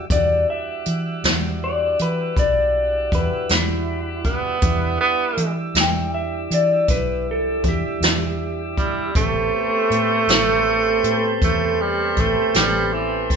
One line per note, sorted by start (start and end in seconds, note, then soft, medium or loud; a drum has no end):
0.10 0.45 E2 medium
0.10 4.59 G3 medium
0.10 4.59 D4 medium
0.10 4.59 E4 medium
0.10 4.59 F#4 medium
0.10 0.47 D5 medium
0.10 kick medium
0.10 closed hi-hat medium
0.50 1.59 E5 medium
0.86 1.25 E3 medium
0.86 closed hi-hat medium
1.24 1.95 E2 medium
1.24 snare loud
1.24 closed hi-hat medium
1.64 1.99 D5 medium
1.99 2.34 E3 medium
1.99 2.37 B4 medium
1.99 closed hi-hat medium
2.37 3.08 B1 medium
2.37 3.11 D5 medium
2.37 kick medium
2.37 closed hi-hat medium
3.12 3.29 E2 medium
3.12 3.50 B4 medium
3.12 kick medium
3.12 closed hi-hat medium
3.49 4.59 E2 medium
3.49 snare medium
3.49 closed hi-hat medium
3.54 4.25 E4 medium
4.24 4.98 B3 medium
4.24 kick medium
4.24 closed hi-hat soft
4.62 4.97 E2 medium
4.62 9.12 E3 medium
4.62 9.11 G3 medium
4.62 9.11 D4 medium
4.62 9.11 E4 medium
4.62 kick medium
4.62 closed hi-hat medium
5.01 5.55 B3 medium
5.37 5.76 E3 medium
5.37 closed hi-hat medium
5.75 6.46 E2 medium
5.75 snare loud
5.75 closed hi-hat medium
5.80 6.14 G5 medium
6.14 6.50 E5 medium
6.51 6.85 E3 medium
6.51 6.89 D5 medium
6.51 closed hi-hat medium
6.88 7.60 B1 medium
6.88 7.26 B4 medium
6.88 kick medium
6.88 closed hi-hat medium
7.31 7.65 A4 medium
7.64 7.81 E2 medium
7.64 kick medium
7.64 closed hi-hat medium
7.68 9.88 G4 medium
8.01 9.10 E2 medium
8.01 snare medium
8.01 closed hi-hat medium
8.78 9.14 G3 medium
8.78 kick medium
8.78 closed hi-hat medium
9.15 9.50 A1 medium
9.15 13.36 A3 medium
9.15 11.38 A3 loud
9.15 13.36 B3 medium
9.15 13.36 C4 medium
9.15 13.36 G4 medium
9.15 kick medium
9.15 closed hi-hat medium
9.90 10.29 A2 medium
9.90 closed hi-hat medium
10.27 10.99 A1 medium
10.27 snare loud
10.27 closed hi-hat medium
11.04 11.38 A2 medium
11.04 closed hi-hat medium
11.42 12.13 E2 medium
11.42 11.83 A3 medium
11.42 kick medium
11.42 closed hi-hat medium
11.81 12.21 G3 medium
12.17 12.34 A1 medium
12.17 12.55 A3 medium
12.17 kick medium
12.17 closed hi-hat medium
12.54 13.36 A1 medium
12.54 12.95 G3 medium
12.54 snare medium
12.54 closed hi-hat medium
12.93 13.29 E3 medium
13.30 kick medium
13.30 closed hi-hat medium